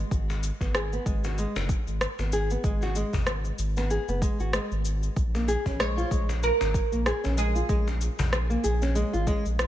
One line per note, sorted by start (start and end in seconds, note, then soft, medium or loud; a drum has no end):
0.11 0.50 G#1 loud
0.11 kick loud
0.11 cabasa soft
0.30 cajon slap medium
0.30 cabasa soft
0.43 cabasa medium
0.61 0.98 G#1 medium
0.61 0.74 B3 medium
0.61 kick medium
0.61 cajon slap medium
0.61 cabasa soft
0.75 0.92 G#4 medium
0.75 cross-stick loud
0.75 cabasa soft
0.93 1.06 B3 medium
0.93 cabasa soft
1.06 1.45 G#1 medium
1.06 1.23 G#3 medium
1.06 kick loud
1.06 cabasa medium
1.24 1.37 F#4 medium
1.24 cajon slap medium
1.24 cabasa soft
1.38 1.55 G#3 medium
1.38 cabasa soft
1.56 1.74 F#1 medium
1.56 cajon slap medium
1.56 cabasa soft
1.69 kick loud
1.69 cabasa medium
1.87 2.06 G#1 medium
1.87 cabasa soft
2.01 cross-stick loud
2.01 cabasa soft
2.19 2.56 G#1 medium
2.19 2.32 B3 medium
2.19 cajon slap medium
2.19 cabasa soft
2.32 2.50 G#4 loud
2.32 cabasa medium
2.50 2.64 B3 medium
2.50 cabasa soft
2.64 3.03 G#1 loud
2.64 2.82 G#3 medium
2.64 kick loud
2.64 cabasa soft
2.82 2.96 F#4 medium
2.82 cajon slap medium
2.82 cabasa soft
2.96 3.13 G#3 medium
2.96 cabasa medium
3.13 3.51 G#1 medium
3.13 kick medium
3.13 cajon bass medium
3.13 cajon slap soft
3.13 cabasa soft
3.27 cross-stick medium
3.27 cabasa soft
3.45 cabasa soft
3.59 3.98 G#1 medium
3.59 cabasa medium
3.77 3.89 B3 medium
3.77 cajon slap medium
3.77 cabasa soft
3.90 4.08 G#4 medium
3.90 cabasa soft
4.08 4.27 F#1 medium
4.08 4.22 B3 medium
4.08 cabasa soft
4.22 4.39 G#3 medium
4.22 kick loud
4.22 cabasa medium
4.40 4.58 G#1 medium
4.40 4.53 F#4 medium
4.40 cabasa soft
4.53 4.71 G#3 medium
4.53 cross-stick loud
4.53 cabasa soft
4.72 5.09 G#1 medium
4.72 cabasa soft
4.85 cabasa medium
5.03 cabasa soft
5.17 5.56 A#1 loud
5.17 kick loud
5.17 cabasa soft
5.35 5.47 A#3 medium
5.35 cajon slap medium
5.35 cabasa soft
5.48 5.65 G#4 medium
5.48 cabasa medium
5.66 6.04 A#1 medium
5.66 5.79 C#4 medium
5.66 kick medium
5.66 cajon slap medium
5.66 cabasa soft
5.79 5.97 G#3 medium
5.79 6.39 C#5 loud
5.79 cross-stick medium
5.79 cabasa soft
5.97 6.11 F4 medium
5.97 cabasa soft
6.11 6.51 A#1 medium
6.11 6.28 G#3 medium
6.11 kick loud
6.11 cabasa medium
6.29 cajon slap medium
6.29 cabasa soft
6.43 7.38 A#4 medium
6.43 cabasa soft
6.61 6.80 G#1 medium
6.61 cajon slap medium
6.61 cabasa soft
6.74 kick loud
6.74 cabasa medium
6.92 7.11 A#1 medium
6.92 7.05 A#3 medium
6.92 cabasa soft
7.06 7.23 G#4 medium
7.06 cross-stick medium
7.06 cabasa soft
7.24 7.62 A#1 medium
7.24 7.37 C#4 medium
7.24 cajon slap medium
7.24 cabasa soft
7.37 7.55 G#3 loud
7.37 9.67 G#4 medium
7.37 cabasa medium
7.55 7.69 F4 medium
7.55 cabasa soft
7.69 8.08 A#1 medium
7.69 7.86 G#3 loud
7.69 kick loud
7.69 cabasa soft
7.87 cajon slap medium
7.87 cabasa soft
8.01 cabasa medium
8.19 8.56 A#1 medium
8.19 cajon bass medium
8.19 cajon slap medium
8.19 cabasa soft
8.33 cross-stick medium
8.33 cabasa soft
8.50 8.63 A#3 medium
8.50 cabasa soft
8.64 9.03 A#1 medium
8.64 8.81 G#4 medium
8.64 cabasa medium
8.82 8.95 C#4 medium
8.82 cajon slap medium
8.82 cabasa soft
8.95 9.13 G#3 medium
8.95 cabasa soft
9.13 9.32 G#1 medium
9.13 9.27 F4 medium
9.13 cabasa soft
9.27 9.45 G#3 loud
9.27 kick loud
9.27 cabasa medium
9.45 9.64 A#1 medium
9.45 cabasa soft
9.59 cross-stick medium
9.59 cabasa soft